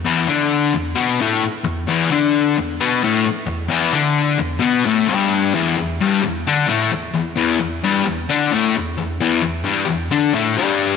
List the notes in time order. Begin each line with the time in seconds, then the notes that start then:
0.05 E2 E3
0.28 D3 D4
0.73 E2
0.95 B2 B3
1.21 A2 A3
1.43 muted distorted electric guitar stroke
1.64 E2
1.88 E2 E3
2.10 D3 D4
2.58 E2
2.80 B2 B3
3.03 A2 A3
3.25 muted distorted electric guitar stroke
3.47 E2
3.69 E2 E3
3.92 D3 D4
4.38 E2
4.59 B2 B3
4.85 A2 A3
5.07 G2 G3
5.55 E2 E3
5.78 E2
6.01 G2 G3
6.23 E2
6.47 D3 D4
6.68 A2 A3
6.91 E2
7.14 E2
7.36 E2 E3
7.60 E2
7.83 G2 G3
8.05 E2
8.29 D3 D4
8.52 A2 A3
8.77 E2
8.98 E2
9.20 E2 E3
9.42 E2
9.64 G2 G3
9.86 E2
10.11 D3 D4
10.34 A2 A3
10.57 G2 G3